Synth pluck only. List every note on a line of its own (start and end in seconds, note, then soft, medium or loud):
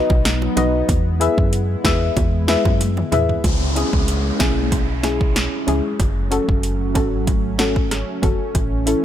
0.56 0.70 D#4 medium
0.56 0.70 F#4 medium
0.56 0.71 B4 medium
0.56 0.71 D#5 loud
1.20 1.34 E4 medium
1.20 1.34 G#4 medium
1.20 1.34 B4 medium
1.20 1.35 E5 loud
1.84 1.98 E4 medium
1.84 1.98 G#4 medium
1.84 1.98 B4 medium
1.84 1.99 E5 loud
2.48 2.62 E4 medium
2.48 2.62 G#4 medium
2.48 2.62 B4 medium
2.48 2.62 E5 loud
3.12 3.26 E4 medium
3.12 3.26 G#4 medium
3.12 3.26 B4 medium
3.12 3.26 E5 medium
3.76 3.89 C#4 medium
3.76 3.90 E4 medium
3.76 3.90 G#4 loud
4.39 4.53 C#4 medium
4.39 4.54 E4 medium
4.39 4.54 G#4 loud
5.03 5.17 C#4 medium
5.03 5.17 E4 medium
5.03 5.18 G#4 loud
5.67 5.81 C#4 medium
5.67 5.81 E4 medium
5.67 5.81 G#4 loud
6.31 6.45 C#4 medium
6.31 6.45 F#4 medium
6.31 6.45 A4 loud
6.95 7.08 C#4 medium
6.95 7.09 F#4 medium
6.95 7.09 A4 loud
7.58 7.72 C#4 medium
7.58 7.73 F#4 medium
7.58 7.73 A4 medium
8.22 8.36 C#4 medium
8.22 8.37 F#4 medium
8.22 8.37 A4 medium
8.86 9.00 C#4 medium
8.86 9.00 E4 medium
8.86 9.01 A4 medium